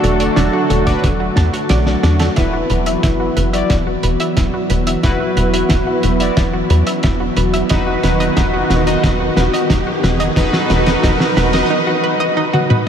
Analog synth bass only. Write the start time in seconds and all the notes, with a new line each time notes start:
0.03 E1
0.37 E1
0.70 E1
1.04 E1
1.37 E2
1.70 B1
2.03 E2
2.37 E1
2.70 E1
3.03 F#1
3.37 F#1
3.70 E1
4.03 E1
4.37 E1
4.70 E1
5.04 E1
5.37 E1
5.70 E1
6.04 E1
6.37 E1
6.70 E2
7.04 E1
7.37 E1
7.71 E1
8.03 E1
8.37 E1
8.70 E1
9.04 E1
9.37 E1
9.70 E1
10.03 E1
10.36 E1
10.70 E1
11.04 E1
11.37 E1